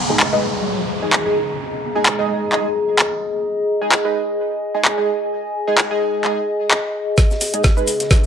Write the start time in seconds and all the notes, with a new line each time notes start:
Already playing: G#4, downlifter
0.09 G#3 D#4 G#4
0.20 clap
0.33 G#3 D#4 B4
0.37 D#5
0.61 A#5
1.02 G#3 D#4 G#4
1.13 clap
1.26 G#3 D#4 G#4
1.95 G#3 D#4 G#4
2.06 clap
2.19 G#3 D#4 G#4
2.52 G#3 D#4 G#4, clap
2.99 clap
3.82 G#3 D#4 G#4
3.92 clap
4.05 G#3 D#4 B4 G#5
4.74 G#3 D#4 G#4
4.85 clap
4.98 G#3 D#4 G#4
5.68 G#3 D#4 G#4
5.78 clap
5.91 G#3 D#4 G#4
6.25 G#3 D#4 G#4, clap
6.71 clap
7.18 kick, snare, closed hi-hat, riser, shaker
7.31 snare, shaker
7.40 snare, open hi-hat, shaker
7.54 G#3 D#4 G#4, closed hi-hat, shaker
7.64 kick, snare, closed hi-hat, shaker
7.77 G#3 D#4 B4, shaker
7.87 open hi-hat, shaker
8.00 snare, closed hi-hat, shaker
8.11 kick, snare, closed hi-hat, shaker